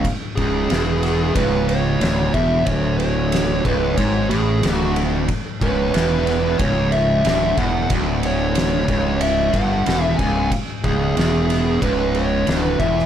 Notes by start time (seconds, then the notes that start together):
0.05 kick, ride
0.36 C#1 C#2 G#4, kick, ride
0.70 E1 E2, snare, ride
1.03 snare, ride
1.35 C#1 C#2 B4, kick, ride
1.68 C#5, ride
2.01 D1 D2, snare, ride
2.34 E1 E2 E5, kick, ride
2.65 D1 D2 C#5, kick, ride
2.98 C#5, ride
3.32 snare, ride
3.65 C#1 C#2 B4, kick, ride
3.97 G#1 G#2 C#5, kick, ride
4.29 A1 A2 G#4, ride
4.63 D1 D2, snare, ride
4.76 F#4
4.96 ride
5.28 kick, ride
5.61 C#1 C#2 B4, kick, ride
5.94 E1 E2, snare, ride
6.27 snare, ride
6.58 C#1 C#2 C#5, kick, ride
6.92 E5, ride
7.25 D1 D2, snare, ride
7.57 E1 E2 F#5, kick, ride
7.90 D1 D2, kick, ride
8.23 C#5, ride
8.55 snare, ride
8.88 C#1 C#2, kick, ride
9.21 E5, ride
9.52 G1 G2 F#5, kick, ride
9.86 E1 E2, snare, ride
10.04 E5
10.17 C#1 C#2 G#5, kick, ride
10.52 kick, ride
10.84 C#1 C#2 G#4, kick, ride
11.17 E1 E2, snare, ride
11.50 snare, ride
11.82 C#1 C#2 B4, kick, ride
12.15 C#5, ride
12.47 D1 D2, snare, ride
12.62 B4
12.79 E1 E2 E5, kick, ride
12.99 snare